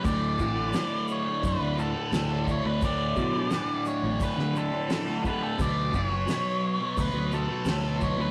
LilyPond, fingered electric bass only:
\new Staff \with { instrumentName = "Fingered electric bass" } { \clef bass \time 4/4 \key d \major \tempo 4 = 87 d,8 a,,8 r4 fis,16 d,8 r16 d,8. d,16~ | d,8 b,8 r8. a,,16 r16 d8 r4 r16 | d,8 fis,,8 r4 d,16 d,8 r16 d,8. d,16 | }